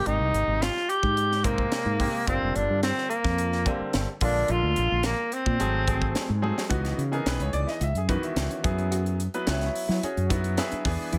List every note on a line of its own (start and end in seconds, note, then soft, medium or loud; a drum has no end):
0.00 0.67 C3 medium
0.00 0.67 G#3 medium
0.00 0.67 A#3 medium
0.00 0.67 G4 medium
0.06 0.17 G#1 medium
0.06 0.64 D#4 medium
0.06 closed hi-hat medium
0.20 0.30 C2 medium
0.33 0.44 G#1 medium
0.33 closed hi-hat medium
0.47 0.68 G#1 medium
0.62 0.91 F4 medium
0.62 snare medium
0.62 closed hi-hat medium
0.77 snare soft
0.89 1.46 G4 medium
0.89 closed hi-hat medium
1.03 1.66 G#2 medium
1.03 kick medium
1.17 closed hi-hat medium
1.32 snare soft
1.44 1.83 C3 medium
1.44 1.83 G#3 medium
1.44 2.28 A#3 medium
1.44 1.84 A#3 medium
1.44 1.84 C4 medium
1.44 kick medium
1.44 closed hi-hat medium
1.58 kick medium
1.72 snare medium
1.72 closed hi-hat medium
1.85 2.07 G#2 medium
2.00 2.19 C3 medium
2.00 2.19 G#3 medium
2.00 2.20 A#3 medium
2.00 2.20 G4 medium
2.00 kick medium
2.00 open hi-hat medium
2.27 2.38 G1 medium
2.27 3.05 D3 medium
2.27 3.05 G3 medium
2.27 3.06 A#3 medium
2.27 2.57 C4 medium
2.27 3.06 F4 medium
2.27 kick medium
2.27 closed hi-hat medium
2.42 2.52 F1 medium
2.56 2.66 G1 medium
2.56 2.83 D4 medium
2.56 closed hi-hat medium
2.70 2.90 G2 medium
2.83 3.11 C4 medium
2.83 snare loud
2.83 closed hi-hat medium
2.98 snare soft
3.10 3.94 A#3 medium
3.10 closed hi-hat soft
3.24 3.66 F2 medium
3.24 kick medium
3.24 snare soft
3.38 closed hi-hat medium
3.52 snare soft
3.66 4.05 D3 medium
3.66 4.05 G3 medium
3.66 4.05 A#3 medium
3.66 4.05 C4 medium
3.66 kick medium
3.66 closed hi-hat medium
3.81 muted fretless electric bass stroke soft
3.93 4.05 G1 medium
3.93 snare medium
3.93 closed hi-hat medium
4.21 4.42 A#1 medium
4.21 5.10 D3 medium
4.21 5.10 G#3 medium
4.21 5.10 A#3 medium
4.21 4.53 D4 medium
4.21 5.11 F4 medium
4.21 kick medium
4.21 open hi-hat medium
4.48 4.60 A#1 medium
4.48 5.05 F4 loud
4.48 closed hi-hat medium
4.63 4.73 D2 medium
4.76 4.88 A#1 medium
4.76 closed hi-hat medium
4.92 5.12 A#1 medium
5.03 5.35 A#3 medium
5.03 snare loud
5.03 closed hi-hat medium
5.32 6.44 C4 medium
5.32 closed hi-hat medium
5.46 5.57 A#2 medium
5.46 kick medium
5.59 6.12 G#1 medium
5.59 5.82 F#3 medium
5.59 5.82 A3 medium
5.59 5.82 C4 medium
5.59 5.83 G#4 medium
5.59 closed hi-hat medium
5.87 6.26 F#3 medium
5.87 6.27 A3 medium
5.87 6.27 C4 medium
5.87 6.27 G#4 medium
5.87 kick medium
5.87 closed hi-hat medium
6.02 kick medium
6.15 snare medium
6.15 closed hi-hat medium
6.29 6.50 G#2 medium
6.42 6.62 F#3 medium
6.42 6.62 A3 medium
6.42 6.62 C4 medium
6.42 6.62 G#4 medium
6.42 high tom medium
6.58 snare medium
6.69 6.92 C#2 medium
6.69 6.99 E3 medium
6.69 6.99 B3 medium
6.69 7.00 D#4 medium
6.69 7.00 F#4 medium
6.69 6.90 F#4 medium
6.69 kick loud
6.69 closed hi-hat medium
6.85 snare soft
6.85 closed hi-hat soft
6.98 7.19 C#3 medium
6.98 closed hi-hat medium
7.12 7.80 E3 medium
7.12 7.80 B3 medium
7.12 7.80 D#4 medium
7.12 7.80 G#4 medium
7.12 7.27 A#4 medium
7.12 closed hi-hat soft
7.26 7.36 B1 medium
7.26 7.45 C#4 medium
7.26 7.41 B4 medium
7.26 snare loud
7.26 closed hi-hat medium
7.39 7.50 C#2 medium
7.39 7.54 C#5 medium
7.39 closed hi-hat soft
7.53 7.64 C#2 medium
7.53 7.67 D5 medium
7.53 closed hi-hat soft
7.67 7.86 E4 medium
7.67 7.82 D#5 medium
7.67 snare soft
7.81 7.91 C#2 medium
7.81 7.96 E5 medium
7.81 closed hi-hat medium
7.94 8.15 F#2 medium
7.94 8.10 G#4 soft
7.94 closed hi-hat soft
8.08 8.65 D#3 medium
8.08 8.64 E3 medium
8.08 8.62 B3 medium
8.08 8.28 D#4 medium
8.08 8.65 F#4 medium
8.08 8.23 B4 medium
8.08 kick medium
8.08 closed hi-hat medium
8.23 9.02 E5 medium
8.23 closed hi-hat soft
8.36 8.47 C#2 medium
8.36 snare medium
8.36 closed hi-hat medium
8.50 8.69 C#4 medium
8.50 closed hi-hat soft
8.63 9.27 F#2 medium
8.63 9.19 F#3 medium
8.63 9.19 B3 medium
8.63 9.19 E4 medium
8.63 9.20 G#4 medium
8.63 kick loud
8.63 closed hi-hat medium
8.78 closed hi-hat soft
8.91 9.11 F#4 medium
8.91 closed hi-hat medium
9.06 closed hi-hat soft
9.20 closed hi-hat medium
9.34 10.02 F#3 medium
9.34 10.02 B3 medium
9.34 9.49 E4 medium
9.34 9.49 B4 medium
9.34 closed hi-hat soft
9.47 9.68 C#2 medium
9.47 9.66 C#4 medium
9.47 10.00 E4 medium
9.47 10.00 B4 medium
9.47 10.00 C#5 medium
9.47 10.00 E5 medium
9.47 snare loud
9.47 closed hi-hat medium
9.61 snare soft
9.61 closed hi-hat soft
9.75 open hi-hat medium
9.88 9.99 F#3 medium
9.88 10.07 E4 medium
9.88 snare soft
10.03 10.55 C#4 soft
10.03 10.29 F#4 soft
10.03 10.54 G#4 soft
10.03 10.54 C#5 medium
10.03 muted fretless electric bass stroke soft
10.03 closed hi-hat medium
10.17 10.58 F#2 medium
10.17 closed hi-hat soft
10.29 10.85 F#3 medium
10.29 10.84 B3 medium
10.29 10.49 D#4 medium
10.29 10.57 E4 medium
10.29 10.85 F#4 medium
10.29 kick medium
10.29 closed hi-hat medium
10.44 closed hi-hat soft
10.57 11.09 E4 medium
10.57 10.85 G#4 medium
10.57 11.09 B4 medium
10.57 11.09 E5 medium
10.57 snare loud
10.57 closed hi-hat medium
10.71 10.90 D4 medium
10.71 muted fretless electric bass stroke soft
10.71 closed hi-hat soft
10.85 10.96 E2 medium
10.85 11.18 E3 medium
10.85 11.18 B3 medium
10.85 11.18 D4 medium
10.85 11.18 G#4 medium
10.85 kick loud
10.85 snare soft
10.85 open hi-hat medium
11.12 11.18 E2 loud
11.12 11.18 E4 medium
11.12 closed hi-hat medium